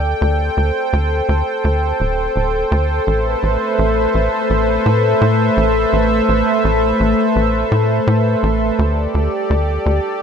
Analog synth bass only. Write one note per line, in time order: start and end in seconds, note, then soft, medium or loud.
0.00 0.14 D2 loud
0.21 0.50 D2 loud
0.57 0.72 D2 medium
0.93 1.22 D2 medium
1.29 1.43 D2 medium
1.64 1.93 D2 medium
2.00 2.29 D1 medium
2.36 2.64 D1 medium
2.72 3.00 D2 loud
3.07 3.36 A1 medium
3.43 3.57 A1 medium
3.79 4.07 A1 medium
4.15 4.29 A1 medium
4.50 4.79 A1 medium
4.86 5.14 A2 medium
5.21 5.50 A2 medium
5.57 5.86 A1 loud
5.93 6.21 A1 medium
6.29 6.43 A1 medium
6.64 6.93 A1 medium
7.00 7.14 A1 medium
7.36 7.64 A1 medium
7.72 8.00 A2 medium
8.07 8.36 A2 medium
8.43 8.72 A1 loud
8.79 9.07 D2 loud
9.15 9.29 D2 medium
9.50 9.79 D2 medium
9.86 10.00 D2 medium